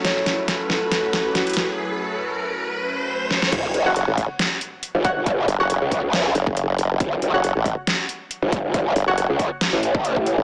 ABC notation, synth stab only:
X:1
M:4/4
L:1/16
Q:"Swing 16ths" 1/4=138
K:F#phr
V:1 name="Synth stab"
z16 | z16 | z3 [Fcf] z8 z2 [Fcf] z | z3 [Fcf] z12 |
z3 [Fcf] z12 | z3 [Fcf] z12 |]